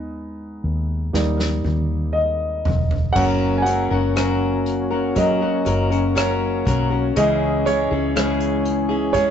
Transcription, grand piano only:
Already playing: G#3 B3 D#4 D#5
1.13 G3 A#3 D#4
2.13 D#5
3.13 F#3 A#3 C#4 F#5
3.58 G#5
3.62 F#5
5.17 F#3 A#3 C#4 D#5
6.17 C#5
7.16 E3 G#3 C#4 D#5
7.66 C#5
9.13 C#5

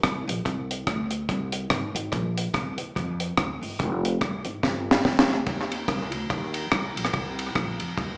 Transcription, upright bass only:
0.04 C2
0.28 A#1
0.46 C2
0.87 D2
1.29 C2
1.71 G#1
1.95 G#1
2.12 A#1
2.54 C2
2.78 D#2
2.96 F2
3.38 D2
3.61 G1
3.80 F1
4.21 C2
4.45 G#1
4.63 G1
5.05 F1
5.29 D2
5.46 D#2
5.88 C2
6.13 D2
6.30 D#2
6.72 C2
6.96 A#1
7.14 C2
7.56 A#1
7.80 F2
7.97 D#2

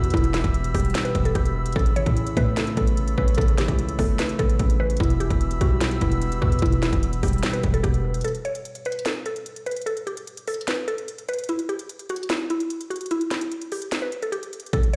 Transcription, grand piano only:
Already playing: B2 E3 G3 B3 B4
0.14 B2
0.34 E3
0.54 B2
0.75 G3
0.95 B2
1.15 B3
1.35 B2
1.56 B4
1.76 C#3
1.96 E3
2.17 C#3
2.37 A3
2.57 C#3
2.77 B3
2.98 C#3
3.18 C#4
3.38 C#3
3.58 E3
3.79 C#3
3.99 A3
4.19 C#3
4.39 B3
4.60 C#3
4.80 C#4
5.00 B2
5.20 E3
5.41 B2
5.61 G3
5.81 B2
6.01 B3
6.22 B2
6.42 B4
6.62 B2
6.83 E3
7.03 B2
7.23 G3
7.43 B2
7.64 B3
7.84 B2
8.04 B4

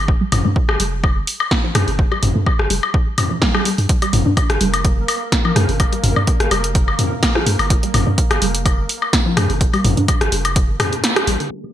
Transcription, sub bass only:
Already playing: G1
0.32 G1
0.45 G2
0.69 G1
0.80 F1
1.16 G1
1.75 G2
1.88 G1
2.23 G1
2.36 G2
2.59 G1
2.70 F1
3.78 G2
4.13 G1
4.26 G2
4.50 G1
4.61 F1
4.97 G1
5.56 G2
5.69 G1
6.04 G1
6.16 G2
6.40 G1
6.51 F1
6.88 G1
7.47 G2
7.59 G1
7.94 G1
8.07 G2
8.31 G1
8.42 F1
8.78 G1
9.37 G2
9.50 G1
9.85 G1
9.97 G2
10.21 G1
10.32 F1
10.69 G1
11.27 A1

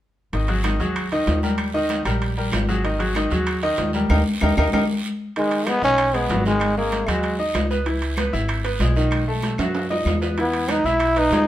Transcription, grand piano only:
0.33 D#3 D#4 D#5
0.49 F#3 F#4 G#4
0.64 D#3 D#4 D#5
0.80 F#3 F#4 G#4
1.12 D#3 D#4 D#5
1.43 G3 G4 A#4
1.74 D#3 D#4 D#5
2.05 G3 G4 A#4
2.37 G3 G4 A#4
2.69 F#3 F#4 G#4
2.84 D#3 D#4 D#5
2.99 F#3 F#4 G#4
3.16 D#3 D#4 D#5
3.32 F#3 F#4 G#4
3.63 D#3 D#4 D#5
3.94 G3 G4 A#4
4.11 D#4 G4 A#4
4.43 D#4 G4 A#4
4.58 D#4 G4 A#4
4.73 D#4 G4 A#4
5.37 D#3 D#4
5.67 G#3 G#4
5.83 D#4 D#5
6.14 G#3 G#4
6.30 F#3 F#4
6.46 D#3 D#4
6.78 G#3 G#4
7.08 F#3 F#4
7.39 D#4 D#5
7.70 B3 B4
7.86 E3 E4
8.18 B3 B4
8.33 E4 E5
8.64 B3 B4
8.80 G#3 G#4
8.96 D#3 D#4
9.28 A3 A4
9.60 F#3 F#4
9.90 D#4 D#5
10.22 B3 B4
10.38 E3 E4
10.69 B3 B4
10.85 E4 E5
11.17 B3 B4
11.33 G#3 G#4

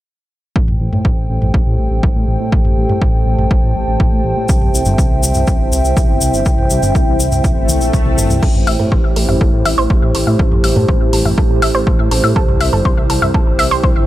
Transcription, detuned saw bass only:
0.56 A1
0.68 A1
0.80 A1
0.93 A2
1.05 A1
1.17 A1
1.29 A1
1.42 A1
1.54 A1
1.66 A2
1.79 A1
1.91 A1
2.03 A1
2.16 A2
2.28 A1
2.40 A2
2.52 A1
2.65 A1
2.77 A1
2.89 A2
3.02 A1
3.14 A1
3.26 A1
3.39 A1
3.51 A1
3.63 A2
3.75 A1
3.88 A1
4.00 A1
4.12 A2
4.25 A1
4.37 A2
4.49 C2
4.62 C2
4.74 C2
4.86 G1
4.98 C2
5.11 C2
5.23 C2
5.35 C2
5.47 C2
5.60 G1
5.72 C2
5.84 C2
5.97 C2
6.09 G1
6.21 C2
6.34 G1
6.46 C2
6.58 C2
6.70 C2
6.83 G1
6.95 C2
7.07 C2
7.20 C2
7.32 C2
7.44 C2
7.57 G1
7.69 C2
7.81 A#1
7.93 C2
8.06 C2
8.18 G1
8.30 C2
8.43 A1
8.55 A1
8.67 A1
8.80 A2
8.92 A1
9.04 A1
9.16 A1
9.29 A1
9.41 A1
9.53 A2
9.66 A1
9.78 A1
9.90 A1
10.03 A2
10.15 A1
10.27 A2
10.39 A1
10.52 A1
10.64 A1
10.76 A2
10.88 A1
11.01 A1
11.13 A1
11.25 A1
11.38 A1
11.50 A2
11.62 A1
11.75 A1
11.87 A1
11.99 A2
12.11 A1
12.24 A2
12.36 C2
12.48 C2
12.61 C2
12.73 G1
12.85 C2
12.98 C2
13.10 C2
13.22 C2
13.34 C2
13.47 G1
13.59 C2
13.71 C2
13.84 C2
13.96 G1

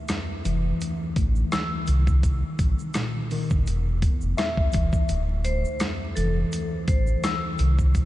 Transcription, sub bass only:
0.46 F1
1.17 A1
1.88 C2
2.59 A1
3.51 G1
3.67 E1
4.22 F1
4.75 E1
5.10 D1
6.17 F1
6.88 A1
7.60 C2

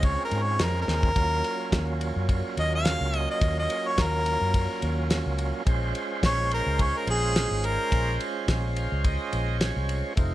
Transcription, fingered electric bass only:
Already playing: C#2
0.32 G#2
0.60 F2
0.88 D#2
1.16 D#2
1.72 D#2
2.16 F#2
2.57 D#2
3.01 C#2
3.42 D#2
3.98 D#2
4.41 F#2
4.83 D#2
5.26 C#2
5.67 A#1
6.23 A#1
6.66 C#2
7.07 A#1
7.51 G#1
7.92 A#1
8.48 A#1
8.92 C#2
9.33 A#1
9.76 C2
10.17 F1

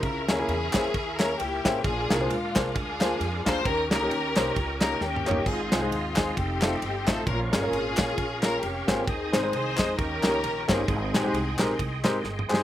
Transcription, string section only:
0.03 E4 A#4
0.30 E4 G#4
1.19 A#4
1.39 A#3 E4 G4
1.83 D4 F4 G#4
2.29 G#3 D4 F4
2.74 D4 F4 G#4
3.46 C5
3.65 C#4 G4 A#4
3.91 C#4 G4 A#4
4.81 A#4
5.01 A#3 C#4 G4
5.47 C4 F4 G#4
5.92 C4 F4
6.37 C4 D#4 G4
7.07 A4
7.27 C#4 F4 A#4
7.52 C#4 F4 G#4
8.43 A#4
8.63 C#4 G4
9.08 C4 D#4 G#4
9.54 D#4 G#4 C5
9.98 C#4 G4 A#4
10.70 C4 D#4 G#4

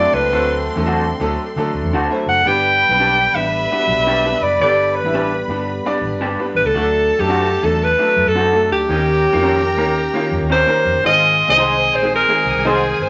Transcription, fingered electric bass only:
0.13 C#2
0.31 D2
0.76 E2
1.20 D2
1.56 D3
1.73 D2
1.82 E2
1.92 D2
2.26 F#1
2.45 G1
2.89 B1
3.33 A1
3.87 B1
3.96 B1
4.41 F#1
4.60 G1
5.04 A1
5.47 G1
6.01 A1
6.12 G1
6.55 A1
6.65 C#2
6.74 D2
7.19 F#2
7.63 E2
8.16 F#2
8.26 F#2
8.70 D2
8.89 D#2
9.34 F2
9.77 D#2
10.31 F2
10.41 D#2
10.85 F2
10.95 G1
11.04 G#1
11.48 C2
11.92 A#1
12.45 C2
12.55 C2
12.99 G1

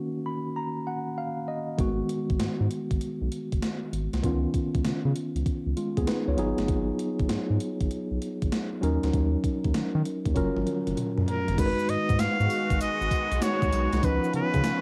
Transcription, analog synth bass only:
1.79 G#1
2.30 G#1
2.40 G#2
2.60 G#2
2.91 G#1
3.22 B1
3.52 F#1
3.93 G#1
4.13 C2
4.24 C#2
4.75 C#2
4.85 C#3
5.05 C#3
5.36 C#2
5.66 C#2
5.97 D#2
6.28 C#2
6.38 G#1
6.58 G1
6.68 G#1
7.20 G#1
7.30 G#2
7.50 G#2
7.81 G#1
8.11 B1
8.42 G#1
8.83 D#2
9.03 D2
9.13 D#2
9.65 D#2
9.75 D#3
9.95 D#3
10.26 D#2
10.36 F#1
10.56 G#1
10.87 F#1
11.18 F#2
11.49 G1
11.58 G#1
11.89 G#2
12.09 G#2
12.20 G#2
12.40 G#2
12.70 G#1
12.81 G#1
13.01 G#1
13.32 B1
13.62 D#2
13.73 B1
13.93 C2
14.03 C#2
14.34 C#3
14.54 C#3
14.65 C#3

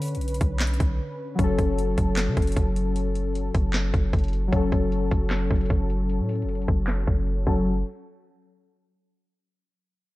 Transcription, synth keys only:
Already playing: D3 C#4 B4
1.35 F#3
1.39 C#4
1.43 A4
4.48 F#3
4.52 C#4
4.56 A4
7.47 F#3 C#4 A4

